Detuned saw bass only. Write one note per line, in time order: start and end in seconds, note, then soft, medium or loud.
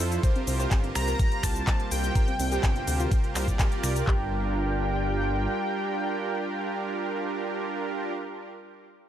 0.00 0.19 F2 loud
0.47 0.67 C2 loud
0.71 0.91 G1 loud
0.95 1.15 C2 loud
1.43 1.63 C2 loud
1.91 2.11 C2 loud
2.39 2.59 C2 medium
2.63 2.83 G1 medium
2.87 3.07 D2 medium
3.35 3.55 C2 loud
3.83 4.03 C2 medium
4.08 5.47 G1 loud